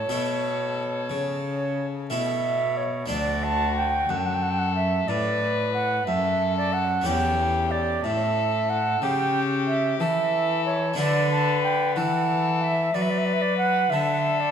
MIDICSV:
0, 0, Header, 1, 5, 480
1, 0, Start_track
1, 0, Key_signature, 2, "major"
1, 0, Tempo, 664452
1, 2244, Time_signature, 12, 3, 24, 8
1, 3672, Tempo, 654308
1, 10589, End_track
2, 0, Start_track
2, 0, Title_t, "Flute"
2, 0, Program_c, 0, 73
2, 0, Note_on_c, 0, 73, 77
2, 1343, Note_off_c, 0, 73, 0
2, 1517, Note_on_c, 0, 76, 80
2, 2001, Note_on_c, 0, 73, 76
2, 2012, Note_off_c, 0, 76, 0
2, 2236, Note_off_c, 0, 73, 0
2, 2241, Note_on_c, 0, 74, 87
2, 2483, Note_on_c, 0, 81, 101
2, 2494, Note_off_c, 0, 74, 0
2, 2716, Note_off_c, 0, 81, 0
2, 2720, Note_on_c, 0, 79, 87
2, 2963, Note_on_c, 0, 78, 72
2, 2974, Note_off_c, 0, 79, 0
2, 3020, Note_on_c, 0, 79, 73
2, 3031, Note_off_c, 0, 78, 0
2, 3076, Note_on_c, 0, 78, 80
2, 3087, Note_off_c, 0, 79, 0
2, 3138, Note_on_c, 0, 79, 72
2, 3148, Note_off_c, 0, 78, 0
2, 3197, Note_on_c, 0, 78, 70
2, 3207, Note_off_c, 0, 79, 0
2, 3255, Note_on_c, 0, 79, 74
2, 3266, Note_off_c, 0, 78, 0
2, 3314, Note_on_c, 0, 78, 89
2, 3325, Note_off_c, 0, 79, 0
2, 3431, Note_off_c, 0, 78, 0
2, 3435, Note_on_c, 0, 76, 83
2, 3670, Note_on_c, 0, 74, 88
2, 3681, Note_off_c, 0, 76, 0
2, 4146, Note_off_c, 0, 74, 0
2, 4150, Note_on_c, 0, 78, 93
2, 4389, Note_off_c, 0, 78, 0
2, 4394, Note_on_c, 0, 76, 90
2, 4750, Note_off_c, 0, 76, 0
2, 4765, Note_on_c, 0, 74, 84
2, 4879, Note_on_c, 0, 78, 88
2, 4890, Note_off_c, 0, 74, 0
2, 5121, Note_on_c, 0, 79, 94
2, 5132, Note_off_c, 0, 78, 0
2, 5600, Note_on_c, 0, 74, 80
2, 5611, Note_off_c, 0, 79, 0
2, 5843, Note_on_c, 0, 76, 84
2, 5854, Note_off_c, 0, 74, 0
2, 6322, Note_on_c, 0, 78, 92
2, 6333, Note_off_c, 0, 76, 0
2, 6559, Note_off_c, 0, 78, 0
2, 6564, Note_on_c, 0, 79, 100
2, 6844, Note_off_c, 0, 79, 0
2, 7038, Note_on_c, 0, 76, 86
2, 7272, Note_off_c, 0, 76, 0
2, 7276, Note_on_c, 0, 76, 90
2, 7749, Note_off_c, 0, 76, 0
2, 7762, Note_on_c, 0, 73, 88
2, 7997, Note_off_c, 0, 73, 0
2, 8001, Note_on_c, 0, 74, 94
2, 8236, Note_off_c, 0, 74, 0
2, 8243, Note_on_c, 0, 81, 103
2, 8473, Note_off_c, 0, 81, 0
2, 8478, Note_on_c, 0, 79, 87
2, 8714, Note_off_c, 0, 79, 0
2, 8718, Note_on_c, 0, 78, 95
2, 9200, Note_on_c, 0, 76, 99
2, 9211, Note_off_c, 0, 78, 0
2, 9440, Note_on_c, 0, 74, 74
2, 9451, Note_off_c, 0, 76, 0
2, 9495, Note_on_c, 0, 76, 77
2, 9506, Note_off_c, 0, 74, 0
2, 9557, Note_on_c, 0, 74, 76
2, 9568, Note_off_c, 0, 76, 0
2, 9614, Note_on_c, 0, 76, 78
2, 9625, Note_off_c, 0, 74, 0
2, 9666, Note_on_c, 0, 74, 76
2, 9677, Note_off_c, 0, 76, 0
2, 9724, Note_on_c, 0, 76, 88
2, 9735, Note_off_c, 0, 74, 0
2, 9785, Note_on_c, 0, 74, 100
2, 9796, Note_off_c, 0, 76, 0
2, 9899, Note_off_c, 0, 74, 0
2, 9903, Note_on_c, 0, 78, 104
2, 10141, Note_on_c, 0, 76, 89
2, 10152, Note_off_c, 0, 78, 0
2, 10509, Note_on_c, 0, 74, 81
2, 10520, Note_off_c, 0, 76, 0
2, 10589, Note_off_c, 0, 74, 0
2, 10589, End_track
3, 0, Start_track
3, 0, Title_t, "Violin"
3, 0, Program_c, 1, 40
3, 0, Note_on_c, 1, 69, 58
3, 1880, Note_off_c, 1, 69, 0
3, 2242, Note_on_c, 1, 66, 68
3, 2960, Note_on_c, 1, 69, 73
3, 2970, Note_off_c, 1, 66, 0
3, 3678, Note_on_c, 1, 71, 81
3, 3689, Note_off_c, 1, 69, 0
3, 4403, Note_on_c, 1, 69, 76
3, 4414, Note_off_c, 1, 71, 0
3, 5117, Note_off_c, 1, 69, 0
3, 5121, Note_on_c, 1, 67, 72
3, 5826, Note_off_c, 1, 67, 0
3, 5844, Note_on_c, 1, 69, 80
3, 6564, Note_on_c, 1, 67, 84
3, 6575, Note_off_c, 1, 69, 0
3, 7280, Note_on_c, 1, 69, 79
3, 7291, Note_off_c, 1, 67, 0
3, 8001, Note_off_c, 1, 69, 0
3, 8007, Note_on_c, 1, 71, 78
3, 8723, Note_on_c, 1, 69, 78
3, 8734, Note_off_c, 1, 71, 0
3, 9439, Note_off_c, 1, 69, 0
3, 9443, Note_on_c, 1, 71, 87
3, 10160, Note_on_c, 1, 69, 79
3, 10171, Note_off_c, 1, 71, 0
3, 10589, Note_off_c, 1, 69, 0
3, 10589, End_track
4, 0, Start_track
4, 0, Title_t, "Harpsichord"
4, 0, Program_c, 2, 6
4, 66, Note_on_c, 2, 57, 40
4, 67, Note_on_c, 2, 47, 54
4, 69, Note_on_c, 2, 64, 39
4, 73, Note_on_c, 2, 69, 46
4, 591, Note_off_c, 2, 57, 0
4, 592, Note_off_c, 2, 64, 0
4, 595, Note_off_c, 2, 69, 0
4, 766, Note_off_c, 2, 47, 0
4, 792, Note_on_c, 2, 49, 53
4, 1490, Note_off_c, 2, 49, 0
4, 1517, Note_on_c, 2, 57, 37
4, 1519, Note_on_c, 2, 47, 45
4, 1521, Note_on_c, 2, 64, 38
4, 1524, Note_on_c, 2, 69, 38
4, 2038, Note_off_c, 2, 57, 0
4, 2041, Note_off_c, 2, 64, 0
4, 2043, Note_off_c, 2, 69, 0
4, 2208, Note_on_c, 2, 57, 51
4, 2213, Note_off_c, 2, 47, 0
4, 2218, Note_on_c, 2, 62, 53
4, 2230, Note_on_c, 2, 69, 54
4, 2242, Note_on_c, 2, 38, 55
4, 2929, Note_off_c, 2, 38, 0
4, 2957, Note_on_c, 2, 42, 60
4, 3642, Note_off_c, 2, 42, 0
4, 3673, Note_on_c, 2, 45, 62
4, 4368, Note_off_c, 2, 45, 0
4, 4399, Note_on_c, 2, 42, 54
4, 5071, Note_off_c, 2, 57, 0
4, 5076, Note_off_c, 2, 62, 0
4, 5082, Note_off_c, 2, 69, 0
4, 5089, Note_on_c, 2, 57, 57
4, 5090, Note_off_c, 2, 42, 0
4, 5103, Note_on_c, 2, 61, 51
4, 5112, Note_on_c, 2, 69, 49
4, 5125, Note_on_c, 2, 40, 59
4, 5813, Note_off_c, 2, 40, 0
4, 5842, Note_on_c, 2, 45, 57
4, 6533, Note_off_c, 2, 45, 0
4, 6561, Note_on_c, 2, 49, 62
4, 7253, Note_off_c, 2, 49, 0
4, 7281, Note_on_c, 2, 52, 49
4, 7957, Note_off_c, 2, 57, 0
4, 7964, Note_off_c, 2, 61, 0
4, 7967, Note_on_c, 2, 57, 55
4, 7969, Note_off_c, 2, 69, 0
4, 7972, Note_off_c, 2, 52, 0
4, 7977, Note_on_c, 2, 62, 54
4, 7988, Note_on_c, 2, 66, 56
4, 8001, Note_on_c, 2, 50, 58
4, 8680, Note_off_c, 2, 57, 0
4, 8690, Note_off_c, 2, 50, 0
4, 8719, Note_on_c, 2, 52, 59
4, 9410, Note_off_c, 2, 52, 0
4, 9439, Note_on_c, 2, 54, 62
4, 10127, Note_off_c, 2, 54, 0
4, 10157, Note_on_c, 2, 50, 55
4, 10589, Note_off_c, 2, 50, 0
4, 10589, Note_off_c, 2, 62, 0
4, 10589, Note_off_c, 2, 66, 0
4, 10589, End_track
5, 0, Start_track
5, 0, Title_t, "Cello"
5, 0, Program_c, 3, 42
5, 69, Note_on_c, 3, 47, 57
5, 796, Note_on_c, 3, 49, 57
5, 807, Note_off_c, 3, 47, 0
5, 1520, Note_on_c, 3, 47, 57
5, 1531, Note_off_c, 3, 49, 0
5, 2236, Note_off_c, 3, 47, 0
5, 2240, Note_on_c, 3, 38, 82
5, 2929, Note_off_c, 3, 38, 0
5, 2959, Note_on_c, 3, 42, 67
5, 3658, Note_off_c, 3, 42, 0
5, 3671, Note_on_c, 3, 45, 64
5, 4381, Note_off_c, 3, 45, 0
5, 4399, Note_on_c, 3, 42, 74
5, 5106, Note_off_c, 3, 42, 0
5, 5120, Note_on_c, 3, 40, 75
5, 5826, Note_off_c, 3, 40, 0
5, 5840, Note_on_c, 3, 45, 65
5, 6547, Note_off_c, 3, 45, 0
5, 6560, Note_on_c, 3, 49, 72
5, 7267, Note_off_c, 3, 49, 0
5, 7282, Note_on_c, 3, 52, 69
5, 7987, Note_off_c, 3, 52, 0
5, 7999, Note_on_c, 3, 50, 82
5, 8717, Note_on_c, 3, 52, 78
5, 8728, Note_off_c, 3, 50, 0
5, 9436, Note_off_c, 3, 52, 0
5, 9440, Note_on_c, 3, 54, 65
5, 10142, Note_off_c, 3, 54, 0
5, 10156, Note_on_c, 3, 50, 70
5, 10589, Note_off_c, 3, 50, 0
5, 10589, End_track
0, 0, End_of_file